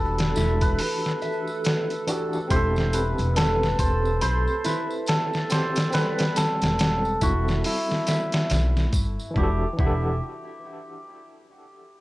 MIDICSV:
0, 0, Header, 1, 7, 480
1, 0, Start_track
1, 0, Key_signature, 1, "minor"
1, 0, Tempo, 857143
1, 1402, Time_signature, 4, 2, 24, 8
1, 6724, End_track
2, 0, Start_track
2, 0, Title_t, "Hammered dulcimer"
2, 0, Program_c, 0, 15
2, 0, Note_on_c, 0, 69, 97
2, 0, Note_on_c, 0, 71, 121
2, 343, Note_off_c, 0, 71, 0
2, 345, Note_on_c, 0, 71, 97
2, 445, Note_off_c, 0, 71, 0
2, 447, Note_on_c, 0, 71, 102
2, 1363, Note_off_c, 0, 69, 0
2, 1405, Note_on_c, 0, 72, 118
2, 1438, Note_off_c, 0, 71, 0
2, 1646, Note_on_c, 0, 71, 92
2, 1680, Note_off_c, 0, 72, 0
2, 1884, Note_on_c, 0, 69, 111
2, 2124, Note_on_c, 0, 72, 103
2, 2158, Note_off_c, 0, 71, 0
2, 2361, Note_off_c, 0, 72, 0
2, 2363, Note_on_c, 0, 72, 116
2, 2606, Note_on_c, 0, 71, 99
2, 2640, Note_off_c, 0, 72, 0
2, 2671, Note_off_c, 0, 71, 0
2, 2844, Note_off_c, 0, 69, 0
2, 2846, Note_on_c, 0, 69, 105
2, 3088, Note_on_c, 0, 72, 104
2, 3325, Note_on_c, 0, 71, 113
2, 3359, Note_off_c, 0, 72, 0
2, 3564, Note_off_c, 0, 69, 0
2, 3566, Note_on_c, 0, 69, 94
2, 3571, Note_off_c, 0, 71, 0
2, 4022, Note_off_c, 0, 69, 0
2, 4047, Note_on_c, 0, 66, 90
2, 4268, Note_off_c, 0, 66, 0
2, 4288, Note_on_c, 0, 64, 88
2, 4983, Note_off_c, 0, 64, 0
2, 5248, Note_on_c, 0, 67, 89
2, 5396, Note_off_c, 0, 67, 0
2, 5485, Note_on_c, 0, 67, 83
2, 5707, Note_off_c, 0, 67, 0
2, 6724, End_track
3, 0, Start_track
3, 0, Title_t, "Analog synth pad"
3, 0, Program_c, 1, 89
3, 0, Note_on_c, 1, 69, 91
3, 5258, Note_off_c, 1, 69, 0
3, 6724, End_track
4, 0, Start_track
4, 0, Title_t, "Nylon-string guitar"
4, 0, Program_c, 2, 24
4, 0, Note_on_c, 2, 71, 84
4, 184, Note_off_c, 2, 71, 0
4, 204, Note_on_c, 2, 64, 89
4, 433, Note_off_c, 2, 64, 0
4, 681, Note_on_c, 2, 76, 72
4, 1382, Note_off_c, 2, 76, 0
4, 1401, Note_on_c, 2, 64, 86
4, 1862, Note_off_c, 2, 64, 0
4, 1881, Note_on_c, 2, 71, 101
4, 2102, Note_off_c, 2, 71, 0
4, 2123, Note_on_c, 2, 69, 98
4, 2353, Note_off_c, 2, 69, 0
4, 2360, Note_on_c, 2, 83, 87
4, 2591, Note_off_c, 2, 83, 0
4, 2601, Note_on_c, 2, 64, 77
4, 3302, Note_off_c, 2, 64, 0
4, 3321, Note_on_c, 2, 71, 80
4, 4022, Note_off_c, 2, 71, 0
4, 4041, Note_on_c, 2, 64, 94
4, 4272, Note_off_c, 2, 64, 0
4, 4520, Note_on_c, 2, 76, 75
4, 5222, Note_off_c, 2, 76, 0
4, 5243, Note_on_c, 2, 64, 91
4, 5393, Note_off_c, 2, 64, 0
4, 5484, Note_on_c, 2, 64, 95
4, 5706, Note_off_c, 2, 64, 0
4, 6724, End_track
5, 0, Start_track
5, 0, Title_t, "Tine electric piano"
5, 0, Program_c, 3, 4
5, 0, Note_on_c, 3, 52, 86
5, 0, Note_on_c, 3, 62, 77
5, 0, Note_on_c, 3, 66, 74
5, 0, Note_on_c, 3, 67, 74
5, 0, Note_on_c, 3, 69, 97
5, 1130, Note_off_c, 3, 52, 0
5, 1136, Note_off_c, 3, 62, 0
5, 1142, Note_off_c, 3, 66, 0
5, 1149, Note_off_c, 3, 67, 0
5, 1155, Note_off_c, 3, 69, 0
5, 1159, Note_on_c, 3, 52, 86
5, 1164, Note_on_c, 3, 62, 78
5, 1171, Note_on_c, 3, 66, 76
5, 1177, Note_on_c, 3, 67, 73
5, 1183, Note_on_c, 3, 69, 94
5, 1378, Note_off_c, 3, 52, 0
5, 1380, Note_off_c, 3, 62, 0
5, 1383, Note_off_c, 3, 66, 0
5, 1386, Note_off_c, 3, 67, 0
5, 1388, Note_on_c, 3, 60, 89
5, 1390, Note_off_c, 3, 69, 0
5, 1410, Note_on_c, 3, 67, 78
5, 1434, Note_on_c, 3, 69, 101
5, 3052, Note_off_c, 3, 60, 0
5, 3063, Note_off_c, 3, 67, 0
5, 3075, Note_off_c, 3, 69, 0
5, 3078, Note_on_c, 3, 60, 83
5, 3090, Note_on_c, 3, 67, 80
5, 3102, Note_on_c, 3, 69, 87
5, 3297, Note_off_c, 3, 60, 0
5, 3303, Note_off_c, 3, 67, 0
5, 3305, Note_on_c, 3, 60, 84
5, 3309, Note_off_c, 3, 69, 0
5, 3329, Note_on_c, 3, 55, 81
5, 3354, Note_on_c, 3, 69, 93
5, 4970, Note_off_c, 3, 60, 0
5, 4983, Note_off_c, 3, 55, 0
5, 4995, Note_off_c, 3, 69, 0
5, 5212, Note_on_c, 3, 52, 81
5, 5231, Note_on_c, 3, 62, 77
5, 5249, Note_on_c, 3, 66, 78
5, 5265, Note_on_c, 3, 67, 77
5, 5283, Note_on_c, 3, 69, 92
5, 5377, Note_off_c, 3, 52, 0
5, 5387, Note_off_c, 3, 62, 0
5, 5397, Note_off_c, 3, 66, 0
5, 5406, Note_off_c, 3, 67, 0
5, 5415, Note_off_c, 3, 69, 0
5, 5452, Note_on_c, 3, 52, 83
5, 5471, Note_on_c, 3, 62, 72
5, 5489, Note_on_c, 3, 78, 75
5, 5508, Note_on_c, 3, 67, 74
5, 5525, Note_on_c, 3, 69, 91
5, 5653, Note_off_c, 3, 52, 0
5, 5663, Note_off_c, 3, 62, 0
5, 5673, Note_off_c, 3, 78, 0
5, 5683, Note_off_c, 3, 67, 0
5, 5692, Note_off_c, 3, 69, 0
5, 6724, End_track
6, 0, Start_track
6, 0, Title_t, "Upright bass"
6, 0, Program_c, 4, 32
6, 0, Note_on_c, 4, 28, 88
6, 186, Note_off_c, 4, 28, 0
6, 207, Note_on_c, 4, 28, 91
6, 421, Note_off_c, 4, 28, 0
6, 1403, Note_on_c, 4, 28, 104
6, 1758, Note_off_c, 4, 28, 0
6, 1785, Note_on_c, 4, 28, 85
6, 2104, Note_off_c, 4, 28, 0
6, 2123, Note_on_c, 4, 28, 85
6, 2339, Note_off_c, 4, 28, 0
6, 2366, Note_on_c, 4, 35, 91
6, 2490, Note_off_c, 4, 35, 0
6, 3708, Note_on_c, 4, 28, 82
6, 4025, Note_off_c, 4, 28, 0
6, 4042, Note_on_c, 4, 28, 93
6, 4259, Note_off_c, 4, 28, 0
6, 4765, Note_on_c, 4, 35, 102
6, 5002, Note_off_c, 4, 35, 0
6, 5002, Note_on_c, 4, 31, 100
6, 5128, Note_off_c, 4, 31, 0
6, 5242, Note_on_c, 4, 28, 97
6, 5393, Note_off_c, 4, 28, 0
6, 5481, Note_on_c, 4, 28, 95
6, 5705, Note_off_c, 4, 28, 0
6, 6724, End_track
7, 0, Start_track
7, 0, Title_t, "Drums"
7, 103, Note_on_c, 9, 42, 79
7, 105, Note_on_c, 9, 54, 25
7, 113, Note_on_c, 9, 38, 100
7, 159, Note_off_c, 9, 42, 0
7, 161, Note_off_c, 9, 54, 0
7, 169, Note_off_c, 9, 38, 0
7, 200, Note_on_c, 9, 54, 90
7, 210, Note_on_c, 9, 38, 50
7, 256, Note_off_c, 9, 54, 0
7, 266, Note_off_c, 9, 38, 0
7, 343, Note_on_c, 9, 42, 66
7, 344, Note_on_c, 9, 36, 88
7, 347, Note_on_c, 9, 54, 42
7, 399, Note_off_c, 9, 42, 0
7, 400, Note_off_c, 9, 36, 0
7, 403, Note_off_c, 9, 54, 0
7, 440, Note_on_c, 9, 46, 82
7, 444, Note_on_c, 9, 54, 44
7, 496, Note_off_c, 9, 46, 0
7, 500, Note_off_c, 9, 54, 0
7, 584, Note_on_c, 9, 54, 27
7, 595, Note_on_c, 9, 38, 48
7, 640, Note_off_c, 9, 54, 0
7, 651, Note_off_c, 9, 38, 0
7, 681, Note_on_c, 9, 54, 89
7, 684, Note_on_c, 9, 42, 73
7, 737, Note_off_c, 9, 54, 0
7, 740, Note_off_c, 9, 42, 0
7, 825, Note_on_c, 9, 54, 38
7, 881, Note_off_c, 9, 54, 0
7, 920, Note_on_c, 9, 54, 47
7, 923, Note_on_c, 9, 42, 87
7, 932, Note_on_c, 9, 38, 114
7, 976, Note_off_c, 9, 54, 0
7, 979, Note_off_c, 9, 42, 0
7, 988, Note_off_c, 9, 38, 0
7, 1066, Note_on_c, 9, 42, 45
7, 1067, Note_on_c, 9, 54, 27
7, 1122, Note_off_c, 9, 42, 0
7, 1123, Note_off_c, 9, 54, 0
7, 1163, Note_on_c, 9, 42, 72
7, 1165, Note_on_c, 9, 54, 83
7, 1219, Note_off_c, 9, 42, 0
7, 1221, Note_off_c, 9, 54, 0
7, 1305, Note_on_c, 9, 54, 40
7, 1361, Note_off_c, 9, 54, 0
7, 1402, Note_on_c, 9, 36, 122
7, 1402, Note_on_c, 9, 54, 54
7, 1403, Note_on_c, 9, 42, 89
7, 1458, Note_off_c, 9, 36, 0
7, 1458, Note_off_c, 9, 54, 0
7, 1459, Note_off_c, 9, 42, 0
7, 1546, Note_on_c, 9, 54, 26
7, 1556, Note_on_c, 9, 38, 50
7, 1602, Note_off_c, 9, 54, 0
7, 1612, Note_off_c, 9, 38, 0
7, 1642, Note_on_c, 9, 42, 64
7, 1642, Note_on_c, 9, 54, 95
7, 1698, Note_off_c, 9, 42, 0
7, 1698, Note_off_c, 9, 54, 0
7, 1782, Note_on_c, 9, 54, 38
7, 1788, Note_on_c, 9, 42, 48
7, 1838, Note_off_c, 9, 54, 0
7, 1844, Note_off_c, 9, 42, 0
7, 1883, Note_on_c, 9, 42, 96
7, 1887, Note_on_c, 9, 54, 50
7, 1892, Note_on_c, 9, 38, 127
7, 1939, Note_off_c, 9, 42, 0
7, 1943, Note_off_c, 9, 54, 0
7, 1948, Note_off_c, 9, 38, 0
7, 2034, Note_on_c, 9, 54, 28
7, 2035, Note_on_c, 9, 38, 52
7, 2090, Note_off_c, 9, 54, 0
7, 2091, Note_off_c, 9, 38, 0
7, 2122, Note_on_c, 9, 36, 102
7, 2123, Note_on_c, 9, 42, 75
7, 2123, Note_on_c, 9, 54, 88
7, 2178, Note_off_c, 9, 36, 0
7, 2179, Note_off_c, 9, 42, 0
7, 2179, Note_off_c, 9, 54, 0
7, 2271, Note_on_c, 9, 54, 36
7, 2327, Note_off_c, 9, 54, 0
7, 2360, Note_on_c, 9, 42, 93
7, 2368, Note_on_c, 9, 54, 47
7, 2416, Note_off_c, 9, 42, 0
7, 2424, Note_off_c, 9, 54, 0
7, 2505, Note_on_c, 9, 54, 23
7, 2561, Note_off_c, 9, 54, 0
7, 2601, Note_on_c, 9, 42, 68
7, 2601, Note_on_c, 9, 54, 81
7, 2610, Note_on_c, 9, 38, 38
7, 2657, Note_off_c, 9, 42, 0
7, 2657, Note_off_c, 9, 54, 0
7, 2666, Note_off_c, 9, 38, 0
7, 2746, Note_on_c, 9, 54, 36
7, 2802, Note_off_c, 9, 54, 0
7, 2836, Note_on_c, 9, 54, 47
7, 2842, Note_on_c, 9, 42, 89
7, 2852, Note_on_c, 9, 38, 115
7, 2892, Note_off_c, 9, 54, 0
7, 2898, Note_off_c, 9, 42, 0
7, 2908, Note_off_c, 9, 38, 0
7, 2987, Note_on_c, 9, 54, 29
7, 2995, Note_on_c, 9, 38, 50
7, 3043, Note_off_c, 9, 54, 0
7, 3051, Note_off_c, 9, 38, 0
7, 3079, Note_on_c, 9, 54, 88
7, 3083, Note_on_c, 9, 42, 87
7, 3092, Note_on_c, 9, 38, 106
7, 3135, Note_off_c, 9, 54, 0
7, 3139, Note_off_c, 9, 42, 0
7, 3148, Note_off_c, 9, 38, 0
7, 3223, Note_on_c, 9, 54, 45
7, 3225, Note_on_c, 9, 42, 82
7, 3235, Note_on_c, 9, 38, 108
7, 3279, Note_off_c, 9, 54, 0
7, 3281, Note_off_c, 9, 42, 0
7, 3291, Note_off_c, 9, 38, 0
7, 3318, Note_on_c, 9, 54, 52
7, 3321, Note_on_c, 9, 42, 80
7, 3331, Note_on_c, 9, 38, 106
7, 3374, Note_off_c, 9, 54, 0
7, 3377, Note_off_c, 9, 42, 0
7, 3387, Note_off_c, 9, 38, 0
7, 3462, Note_on_c, 9, 54, 27
7, 3465, Note_on_c, 9, 42, 78
7, 3474, Note_on_c, 9, 38, 102
7, 3518, Note_off_c, 9, 54, 0
7, 3521, Note_off_c, 9, 42, 0
7, 3530, Note_off_c, 9, 38, 0
7, 3562, Note_on_c, 9, 42, 80
7, 3563, Note_on_c, 9, 54, 97
7, 3572, Note_on_c, 9, 38, 105
7, 3618, Note_off_c, 9, 42, 0
7, 3619, Note_off_c, 9, 54, 0
7, 3628, Note_off_c, 9, 38, 0
7, 3703, Note_on_c, 9, 54, 38
7, 3706, Note_on_c, 9, 42, 80
7, 3715, Note_on_c, 9, 38, 104
7, 3759, Note_off_c, 9, 54, 0
7, 3762, Note_off_c, 9, 42, 0
7, 3771, Note_off_c, 9, 38, 0
7, 3803, Note_on_c, 9, 42, 95
7, 3803, Note_on_c, 9, 54, 53
7, 3812, Note_on_c, 9, 38, 125
7, 3859, Note_off_c, 9, 42, 0
7, 3859, Note_off_c, 9, 54, 0
7, 3868, Note_off_c, 9, 38, 0
7, 3948, Note_on_c, 9, 54, 27
7, 4004, Note_off_c, 9, 54, 0
7, 4039, Note_on_c, 9, 42, 77
7, 4040, Note_on_c, 9, 54, 94
7, 4041, Note_on_c, 9, 36, 99
7, 4095, Note_off_c, 9, 42, 0
7, 4096, Note_off_c, 9, 54, 0
7, 4097, Note_off_c, 9, 36, 0
7, 4189, Note_on_c, 9, 54, 34
7, 4194, Note_on_c, 9, 38, 49
7, 4245, Note_off_c, 9, 54, 0
7, 4250, Note_off_c, 9, 38, 0
7, 4280, Note_on_c, 9, 46, 89
7, 4288, Note_on_c, 9, 54, 47
7, 4336, Note_off_c, 9, 46, 0
7, 4344, Note_off_c, 9, 54, 0
7, 4426, Note_on_c, 9, 54, 25
7, 4432, Note_on_c, 9, 38, 49
7, 4482, Note_off_c, 9, 54, 0
7, 4488, Note_off_c, 9, 38, 0
7, 4517, Note_on_c, 9, 42, 76
7, 4521, Note_on_c, 9, 54, 87
7, 4527, Note_on_c, 9, 38, 99
7, 4573, Note_off_c, 9, 42, 0
7, 4577, Note_off_c, 9, 54, 0
7, 4583, Note_off_c, 9, 38, 0
7, 4660, Note_on_c, 9, 42, 83
7, 4668, Note_on_c, 9, 54, 34
7, 4670, Note_on_c, 9, 38, 106
7, 4716, Note_off_c, 9, 42, 0
7, 4724, Note_off_c, 9, 54, 0
7, 4726, Note_off_c, 9, 38, 0
7, 4758, Note_on_c, 9, 42, 82
7, 4767, Note_on_c, 9, 54, 54
7, 4768, Note_on_c, 9, 38, 101
7, 4814, Note_off_c, 9, 42, 0
7, 4823, Note_off_c, 9, 54, 0
7, 4824, Note_off_c, 9, 38, 0
7, 4909, Note_on_c, 9, 54, 24
7, 4910, Note_on_c, 9, 38, 46
7, 4965, Note_off_c, 9, 54, 0
7, 4966, Note_off_c, 9, 38, 0
7, 4999, Note_on_c, 9, 42, 65
7, 5000, Note_on_c, 9, 36, 92
7, 5004, Note_on_c, 9, 54, 90
7, 5055, Note_off_c, 9, 42, 0
7, 5056, Note_off_c, 9, 36, 0
7, 5060, Note_off_c, 9, 54, 0
7, 5149, Note_on_c, 9, 54, 43
7, 5205, Note_off_c, 9, 54, 0
7, 5241, Note_on_c, 9, 36, 114
7, 5297, Note_off_c, 9, 36, 0
7, 5481, Note_on_c, 9, 36, 115
7, 5537, Note_off_c, 9, 36, 0
7, 6724, End_track
0, 0, End_of_file